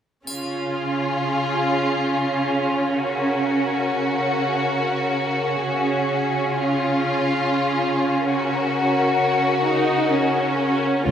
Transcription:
0.27 5.59 C#3 soft
0.27 5.59 C#4 soft
0.27 2.96 F4 soft
0.27 2.95 G#4 soft
0.27 triangle soft
2.98 6.50 F#4 soft
2.98 5.59 A#4 soft
5.62 10.83 C#3 soft
5.62 9.61 C#4 soft
5.62 8.25 G#4 soft
6.52 8.30 F4 soft
8.29 10.83 F#4 soft
8.29 10.83 A#4 soft
9.65 10.09 D#4 soft
10.11 11.07 C#4 soft
11.07 11.11 C#2 soft
11.07 11.11 C#3 soft
11.07 11.11 F4 medium

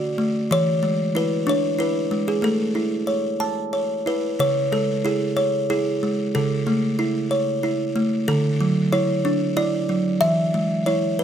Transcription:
0.00 0.17 A3 medium
0.00 0.50 F#4 medium
0.00 0.50 D5 medium
0.18 0.50 A3 medium
0.51 1.79 E3 medium
0.51 1.18 C#5 loud
0.83 2.10 G#3 medium
1.15 1.77 E4 medium
1.15 1.49 B4 medium
1.47 2.44 D4 medium
1.47 1.78 C#5 medium
1.79 2.43 E4 medium
1.79 2.29 B4 medium
2.11 2.44 G#3 medium
2.28 2.43 G#4 medium
2.42 3.73 A3 medium
2.42 3.70 A4 medium
2.75 4.05 E4 medium
3.07 3.72 C#5 medium
3.40 4.40 A5 medium
3.73 4.39 C#5 medium
4.06 4.40 E4 medium
4.06 4.22 B4 medium
4.39 5.70 C#3 medium
4.39 4.74 C#5 loud
4.72 6.02 G#3 medium
4.72 5.06 A4 medium
5.05 5.69 E4 medium
5.05 5.69 G#4 medium
5.37 6.34 C#5 medium
5.70 6.34 E4 medium
5.70 6.36 G#4 medium
6.03 6.35 G#3 medium
6.35 7.64 C#3 medium
6.35 7.27 A4 medium
6.67 7.94 A3 medium
6.99 7.62 E4 medium
7.31 8.28 C#5 medium
7.63 8.28 E4 medium
7.96 8.28 A3 medium
8.28 9.57 D3 medium
8.28 8.89 A4 medium
8.61 9.88 F#3 medium
8.93 9.55 E4 medium
8.93 9.53 C#5 medium
9.25 10.22 D4 medium
9.57 10.22 E4 medium
9.57 10.24 D5 medium
9.89 10.22 F#3 medium
10.21 11.24 E3 medium
10.21 10.88 E5 loud
10.54 11.24 G#3 medium
10.86 11.24 E4 medium
10.86 11.24 C#5 medium
11.19 11.24 B4 medium

